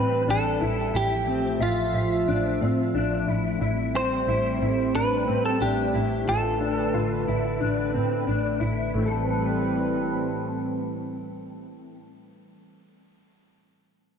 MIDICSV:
0, 0, Header, 1, 5, 480
1, 0, Start_track
1, 0, Key_signature, 0, "minor"
1, 0, Tempo, 666667
1, 679, Time_signature, 4, 2, 24, 8
1, 10214, End_track
2, 0, Start_track
2, 0, Title_t, "Clean electric guitar"
2, 0, Program_c, 0, 27
2, 0, Note_on_c, 0, 71, 74
2, 217, Note_off_c, 0, 71, 0
2, 220, Note_on_c, 0, 69, 74
2, 693, Note_on_c, 0, 67, 81
2, 703, Note_off_c, 0, 69, 0
2, 1166, Note_off_c, 0, 67, 0
2, 1169, Note_on_c, 0, 65, 60
2, 2335, Note_off_c, 0, 65, 0
2, 2854, Note_on_c, 0, 72, 93
2, 3564, Note_off_c, 0, 72, 0
2, 3567, Note_on_c, 0, 71, 78
2, 3925, Note_off_c, 0, 71, 0
2, 3928, Note_on_c, 0, 69, 68
2, 4045, Note_on_c, 0, 67, 67
2, 4047, Note_off_c, 0, 69, 0
2, 4527, Note_on_c, 0, 69, 75
2, 4536, Note_off_c, 0, 67, 0
2, 5934, Note_off_c, 0, 69, 0
2, 10214, End_track
3, 0, Start_track
3, 0, Title_t, "Clean electric guitar"
3, 0, Program_c, 1, 27
3, 0, Note_on_c, 1, 60, 68
3, 196, Note_off_c, 1, 60, 0
3, 199, Note_on_c, 1, 62, 61
3, 436, Note_on_c, 1, 64, 63
3, 439, Note_off_c, 1, 62, 0
3, 667, Note_off_c, 1, 64, 0
3, 676, Note_on_c, 1, 64, 66
3, 917, Note_off_c, 1, 64, 0
3, 917, Note_on_c, 1, 60, 61
3, 1155, Note_on_c, 1, 76, 75
3, 1158, Note_off_c, 1, 60, 0
3, 1389, Note_off_c, 1, 76, 0
3, 1398, Note_on_c, 1, 76, 55
3, 1638, Note_off_c, 1, 76, 0
3, 1641, Note_on_c, 1, 62, 79
3, 1880, Note_off_c, 1, 62, 0
3, 1882, Note_on_c, 1, 60, 65
3, 2120, Note_off_c, 1, 60, 0
3, 2121, Note_on_c, 1, 62, 70
3, 2360, Note_off_c, 1, 62, 0
3, 2362, Note_on_c, 1, 64, 65
3, 2593, Note_off_c, 1, 64, 0
3, 2602, Note_on_c, 1, 64, 70
3, 2840, Note_off_c, 1, 64, 0
3, 2841, Note_on_c, 1, 60, 64
3, 3080, Note_off_c, 1, 60, 0
3, 3084, Note_on_c, 1, 64, 66
3, 3313, Note_off_c, 1, 64, 0
3, 3322, Note_on_c, 1, 64, 61
3, 3560, Note_off_c, 1, 64, 0
3, 3562, Note_on_c, 1, 62, 72
3, 3795, Note_off_c, 1, 62, 0
3, 3798, Note_on_c, 1, 60, 60
3, 4035, Note_off_c, 1, 60, 0
3, 4038, Note_on_c, 1, 62, 65
3, 4277, Note_on_c, 1, 64, 64
3, 4278, Note_off_c, 1, 62, 0
3, 4515, Note_off_c, 1, 64, 0
3, 4518, Note_on_c, 1, 65, 72
3, 4756, Note_on_c, 1, 62, 61
3, 4758, Note_off_c, 1, 65, 0
3, 4996, Note_on_c, 1, 65, 66
3, 4998, Note_off_c, 1, 62, 0
3, 5236, Note_off_c, 1, 65, 0
3, 5239, Note_on_c, 1, 64, 57
3, 5475, Note_on_c, 1, 62, 70
3, 5479, Note_off_c, 1, 64, 0
3, 5715, Note_off_c, 1, 62, 0
3, 5718, Note_on_c, 1, 60, 57
3, 5953, Note_off_c, 1, 60, 0
3, 5956, Note_on_c, 1, 62, 60
3, 6193, Note_on_c, 1, 64, 64
3, 6197, Note_off_c, 1, 62, 0
3, 6436, Note_off_c, 1, 64, 0
3, 6436, Note_on_c, 1, 57, 47
3, 6465, Note_on_c, 1, 60, 44
3, 6493, Note_on_c, 1, 64, 50
3, 6519, Note_off_c, 1, 64, 0
3, 6522, Note_on_c, 1, 69, 52
3, 8591, Note_off_c, 1, 57, 0
3, 8620, Note_off_c, 1, 60, 0
3, 8677, Note_off_c, 1, 69, 0
3, 10214, End_track
4, 0, Start_track
4, 0, Title_t, "Analog synth pad"
4, 0, Program_c, 2, 89
4, 0, Note_on_c, 2, 52, 76
4, 0, Note_on_c, 2, 55, 63
4, 0, Note_on_c, 2, 60, 75
4, 656, Note_off_c, 2, 52, 0
4, 658, Note_off_c, 2, 60, 0
4, 659, Note_off_c, 2, 55, 0
4, 678, Note_on_c, 2, 57, 72
4, 679, Note_on_c, 2, 53, 68
4, 679, Note_on_c, 2, 76, 85
4, 2580, Note_off_c, 2, 53, 0
4, 2580, Note_off_c, 2, 76, 0
4, 2601, Note_on_c, 2, 60, 87
4, 2604, Note_on_c, 2, 55, 77
4, 4501, Note_off_c, 2, 60, 0
4, 4502, Note_off_c, 2, 55, 0
4, 4521, Note_on_c, 2, 71, 76
4, 4522, Note_on_c, 2, 50, 73
4, 6410, Note_off_c, 2, 57, 0
4, 6421, Note_off_c, 2, 50, 0
4, 6421, Note_off_c, 2, 71, 0
4, 6435, Note_on_c, 2, 60, 61
4, 6436, Note_on_c, 2, 55, 64
4, 6437, Note_on_c, 2, 52, 68
4, 6439, Note_on_c, 2, 45, 73
4, 6441, Note_on_c, 2, 71, 72
4, 8590, Note_off_c, 2, 60, 0
4, 8591, Note_off_c, 2, 55, 0
4, 8592, Note_off_c, 2, 52, 0
4, 8594, Note_off_c, 2, 45, 0
4, 8596, Note_off_c, 2, 71, 0
4, 10214, End_track
5, 0, Start_track
5, 0, Title_t, "Double bass"
5, 0, Program_c, 3, 43
5, 0, Note_on_c, 3, 45, 85
5, 169, Note_off_c, 3, 45, 0
5, 199, Note_on_c, 3, 33, 78
5, 410, Note_off_c, 3, 33, 0
5, 440, Note_on_c, 3, 33, 78
5, 651, Note_off_c, 3, 33, 0
5, 676, Note_on_c, 3, 33, 83
5, 1100, Note_off_c, 3, 33, 0
5, 1154, Note_on_c, 3, 33, 87
5, 1367, Note_off_c, 3, 33, 0
5, 1396, Note_on_c, 3, 33, 81
5, 1608, Note_off_c, 3, 33, 0
5, 1635, Note_on_c, 3, 33, 84
5, 1848, Note_off_c, 3, 33, 0
5, 1880, Note_on_c, 3, 45, 85
5, 2091, Note_off_c, 3, 45, 0
5, 2119, Note_on_c, 3, 33, 80
5, 2330, Note_off_c, 3, 33, 0
5, 2358, Note_on_c, 3, 33, 70
5, 2570, Note_off_c, 3, 33, 0
5, 2596, Note_on_c, 3, 33, 88
5, 3020, Note_off_c, 3, 33, 0
5, 3077, Note_on_c, 3, 33, 77
5, 3289, Note_off_c, 3, 33, 0
5, 3323, Note_on_c, 3, 33, 83
5, 3532, Note_off_c, 3, 33, 0
5, 3559, Note_on_c, 3, 33, 74
5, 3770, Note_off_c, 3, 33, 0
5, 3800, Note_on_c, 3, 45, 75
5, 4011, Note_off_c, 3, 45, 0
5, 4041, Note_on_c, 3, 33, 83
5, 4251, Note_off_c, 3, 33, 0
5, 4283, Note_on_c, 3, 33, 81
5, 4492, Note_off_c, 3, 33, 0
5, 4525, Note_on_c, 3, 33, 90
5, 4945, Note_off_c, 3, 33, 0
5, 5001, Note_on_c, 3, 33, 68
5, 5211, Note_off_c, 3, 33, 0
5, 5242, Note_on_c, 3, 33, 76
5, 5452, Note_off_c, 3, 33, 0
5, 5480, Note_on_c, 3, 33, 70
5, 5691, Note_off_c, 3, 33, 0
5, 5721, Note_on_c, 3, 45, 79
5, 5931, Note_off_c, 3, 45, 0
5, 5959, Note_on_c, 3, 33, 77
5, 6170, Note_off_c, 3, 33, 0
5, 6199, Note_on_c, 3, 33, 72
5, 6410, Note_off_c, 3, 33, 0
5, 6438, Note_on_c, 3, 33, 76
5, 8594, Note_off_c, 3, 33, 0
5, 10214, End_track
0, 0, End_of_file